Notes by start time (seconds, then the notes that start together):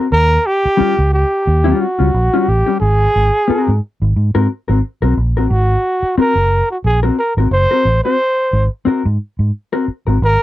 0.12 D#2 A#4
0.47 G4
0.65 muted fingered electric bass stroke
0.77 G3 C#4 F4, muted fingered electric bass stroke
0.99 C#2
1.14 G4
1.47 D#2
1.64 G3 C#4 F4
1.81 F#4
1.99 C#2 G3 C#4 F4
2.14 A#1
2.34 G3 C#4 F4
2.48 A1 G4
2.66 G3 C#4 G4
2.81 G#1 G#4
3.16 G#1
3.48 C4 F#4 A#4, muted fingered electric bass stroke
3.68 G#2
4.02 G#1
4.16 G#2
4.35 G#2 C4 F#4 A#4
4.68 G#1 C4 F#4 A#4
5.02 B1 C4 F#4 A#4
5.17 A#1
5.35 A1 C4 F#4 A#4
5.50 G#1 F#4
6.02 muted fingered electric bass stroke
6.17 C4 F#4 A#4, muted fingered electric bass stroke
6.35 F#1
6.71 F#4
6.84 A#1 G#4
7.03 C4 F#4 A#4
7.19 A#4
7.37 G#1 C4 F#4 A#4
7.51 F#1 C5
7.71 C4 F#4 A#4
7.85 A1
8.04 C4 F#4 C5
8.53 G#1
8.85 C4 F#4 A#4, muted fingered electric bass stroke
9.05 G#2
9.39 G#2
9.73 C4 F#4 A#4
9.88 muted fingered electric bass stroke
10.07 G#1 C4 F#4 A#4
10.22 G#1 A#4